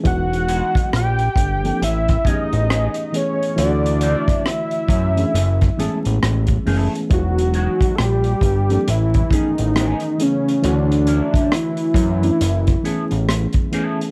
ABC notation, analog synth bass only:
X:1
M:4/4
L:1/16
Q:"Swing 16ths" 1/4=68
K:Alyd
V:1 name="Analog synth bass" clef=bass
E,,,3 z ^A,,,2 =G,,,2 =A,,,2 z A,,,2 z3 | =D,,3 z3 F,,2 F,,,2 A,,, A,,, A,,,2 F,,, z | E,,,3 z ^A,,,2 =G,,,2 =A,,,2 z A,,,2 z3 | =D,,3 z3 F,,2 F,,,2 z A,,,2 z3 |]